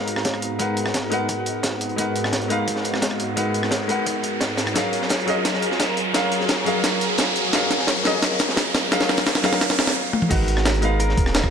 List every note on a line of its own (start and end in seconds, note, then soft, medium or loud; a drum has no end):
0.00 4.72 G#2 medium
0.00 0.59 G#3 medium
0.00 4.72 B3 medium
0.00 0.59 D#4 medium
0.00 4.72 D#4 medium
0.00 4.72 F#4 medium
0.00 0.60 A#4 medium
0.00 0.60 B4 medium
0.00 0.58 F5 medium
0.00 0.61 F#5 medium
0.00 1.96 A#5 medium
0.00 riser medium
0.07 closed hi-hat medium
0.16 cross-stick soft
0.16 snare medium
0.25 kick medium
0.25 snare loud
0.25 closed hi-hat medium
0.34 cross-stick soft
0.42 closed hi-hat medium
0.59 0.66 G#3 medium
0.59 0.66 D#4 medium
0.59 0.67 A#4 medium
0.59 0.67 B4 medium
0.59 0.67 F#5 medium
0.59 kick medium
0.59 closed hi-hat medium
0.77 closed hi-hat medium
0.86 cross-stick soft
0.86 snare soft
0.94 kick loud
0.94 snare loud
0.94 closed hi-hat medium
1.10 1.95 G#3 medium
1.10 1.96 D#4 medium
1.10 1.96 A#4 medium
1.10 1.97 B4 medium
1.10 1.97 F#5 medium
1.10 closed hi-hat medium
1.29 kick loud
1.29 closed hi-hat medium
1.46 closed hi-hat medium
1.63 kick medium
1.63 snare loud
1.63 closed hi-hat medium
1.81 closed hi-hat medium
1.89 closed hi-hat soft
1.96 2.47 G#3 medium
1.96 2.48 D#4 medium
1.96 2.48 A#4 medium
1.96 2.49 B4 medium
1.96 2.49 F#5 medium
1.96 kick medium
1.96 closed hi-hat medium
2.16 closed hi-hat medium
2.24 cross-stick soft
2.24 snare soft
2.33 kick loud
2.33 snare loud
2.33 closed hi-hat medium
2.41 closed hi-hat soft
2.48 3.34 G#3 medium
2.48 3.34 D#4 medium
2.48 3.35 A#4 medium
2.48 3.35 B4 medium
2.48 3.36 F5 medium
2.48 closed hi-hat medium
2.68 kick loud
2.68 closed hi-hat medium
2.76 snare soft
2.85 closed hi-hat medium
2.94 cross-stick soft
2.94 snare medium
3.02 kick loud
3.02 snare loud
3.02 closed hi-hat medium
3.11 cross-stick soft
3.20 closed hi-hat medium
3.36 3.43 G#3 medium
3.36 3.44 D#4 medium
3.36 3.44 A#4 medium
3.36 3.44 B4 medium
3.36 3.44 F#5 medium
3.36 kick loud
3.36 closed hi-hat medium
3.54 closed hi-hat medium
3.63 cross-stick soft
3.63 snare soft
3.71 kick medium
3.71 snare loud
3.71 closed hi-hat medium
3.87 4.73 G#3 medium
3.87 4.73 D#4 medium
3.87 4.74 A#4 medium
3.87 4.74 B4 medium
3.87 4.75 F#5 medium
3.87 closed hi-hat medium
4.06 kick loud
4.06 closed hi-hat medium
4.23 closed hi-hat medium
4.41 kick loud
4.41 snare loud
4.41 closed hi-hat medium
4.57 snare loud
4.57 closed hi-hat medium
4.67 cross-stick medium
4.67 closed hi-hat soft
4.74 5.24 F#3 medium
4.74 9.92 F#3 medium
4.74 5.25 C#4 medium
4.74 9.92 F4 medium
4.74 9.92 G#4 medium
4.74 5.26 G#4 medium
4.74 9.92 A#4 medium
4.74 5.26 A#4 medium
4.74 5.27 F5 medium
4.74 kick loud
4.74 snare soft
4.74 closed hi-hat medium
4.93 closed hi-hat medium
5.02 snare medium
5.09 kick loud
5.09 snare soft
5.09 snare loud
5.09 closed hi-hat medium
5.20 closed hi-hat soft
5.26 6.11 F#3 medium
5.26 6.12 C#4 medium
5.26 6.12 G#4 medium
5.26 6.13 A#4 medium
5.26 6.13 D#5 medium
5.26 closed hi-hat medium
5.45 kick loud
5.45 snare medium
5.45 closed hi-hat medium
5.53 snare soft
5.62 closed hi-hat medium
5.71 snare medium
5.80 kick loud
5.80 snare loud
5.80 snare medium
5.80 closed hi-hat medium
5.97 closed hi-hat medium
6.13 6.21 F#3 medium
6.13 6.21 C#4 medium
6.13 6.21 G#4 medium
6.13 6.22 A#4 medium
6.13 6.22 F5 medium
6.13 kick loud
6.13 snare medium
6.13 closed hi-hat medium
6.32 closed hi-hat medium
6.40 snare soft
6.49 kick loud
6.49 snare medium
6.49 snare loud
6.49 closed hi-hat medium
6.65 7.50 F#3 medium
6.65 7.51 C#4 medium
6.65 7.51 G#4 medium
6.65 7.52 A#4 medium
6.65 7.52 F5 medium
6.65 closed hi-hat medium
6.84 kick loud
6.84 snare medium
6.84 closed hi-hat medium
6.84 closed hi-hat loud
7.01 closed hi-hat medium
7.18 kick loud
7.18 snare medium
7.18 snare loud
7.18 closed hi-hat medium
7.36 closed hi-hat medium
7.44 closed hi-hat soft
7.51 8.02 F#3 medium
7.51 8.03 C#4 medium
7.51 8.03 G#4 medium
7.51 8.04 A#4 medium
7.51 8.04 F5 medium
7.51 kick loud
7.51 snare medium
7.51 closed hi-hat loud
7.71 snare medium
7.71 closed hi-hat medium
7.78 snare medium
7.87 kick loud
7.87 snare loud
7.87 snare medium
7.87 closed hi-hat medium
7.97 closed hi-hat soft
8.03 8.89 F#3 medium
8.03 8.89 C#4 medium
8.03 8.90 G#4 medium
8.03 8.90 A#4 medium
8.03 8.91 D#5 medium
8.03 snare medium
8.03 closed hi-hat medium
8.22 kick loud
8.22 snare medium
8.22 closed hi-hat medium
8.22 closed hi-hat loud
8.31 snare soft
8.39 snare medium
8.39 closed hi-hat medium
8.49 snare medium
8.57 kick loud
8.57 snare loud
8.57 snare medium
8.57 closed hi-hat loud
8.74 snare loud
8.74 snare medium
8.74 closed hi-hat medium
8.91 8.98 F#3 medium
8.91 8.99 C#4 medium
8.91 8.99 G#4 medium
8.91 8.99 A#4 medium
8.91 8.99 F5 medium
8.91 kick loud
8.91 snare medium
8.91 closed hi-hat medium
8.91 closed hi-hat loud
9.00 snare medium
9.00 snare loud
9.00 closed hi-hat medium
9.09 snare medium
9.09 closed hi-hat medium
9.17 snare medium
9.17 closed hi-hat medium
9.26 kick loud
9.26 snare medium
9.26 snare loud
9.26 closed hi-hat medium
9.26 closed hi-hat loud
9.35 snare medium
9.42 10.28 F#3 medium
9.42 10.28 C#4 medium
9.42 10.29 G#4 medium
9.42 10.29 A#4 medium
9.42 10.30 F5 medium
9.42 snare loud
9.42 closed hi-hat medium
9.53 snare medium
9.61 kick loud
9.61 snare loud
9.61 closed hi-hat medium
9.61 closed hi-hat loud
9.70 snare medium
9.79 snare loud
9.79 closed hi-hat medium
9.87 snare medium
9.87 snare loud
9.87 closed hi-hat medium
10.13 high tom medium
10.22 mid tom medium
10.29 11.16 G#1 loud
10.29 10.79 G#3 medium
10.29 11.50 B3 medium
10.29 10.80 D#4 medium
10.29 11.50 F#4 medium
10.29 10.99 F#4 medium
10.29 10.81 A#4 medium
10.29 10.81 B4 medium
10.29 10.82 F#5 medium
10.29 11.50 A#5 medium
10.29 kick loud
10.29 closed hi-hat medium
10.29 closed hi-hat loud
10.29 crash loud
10.48 closed hi-hat medium
10.57 cross-stick medium
10.57 snare medium
10.65 snare loud
10.65 closed hi-hat medium
10.74 closed hi-hat soft
10.81 11.50 G#3 medium
10.81 11.50 B3 medium
10.81 11.50 D#4 medium
10.81 11.50 A#4 medium
10.81 11.50 F5 medium
10.81 closed hi-hat medium
11.00 11.48 A#4 loud
11.00 closed hi-hat medium
11.00 closed hi-hat loud
11.09 snare soft
11.17 11.42 D#1 loud
11.17 kick loud
11.17 closed hi-hat medium
11.26 cross-stick soft
11.26 snare medium
11.34 snare loud
11.34 closed hi-hat medium
11.34 closed hi-hat loud
11.43 11.50 D#1 medium
11.43 kick medium
11.43 cross-stick soft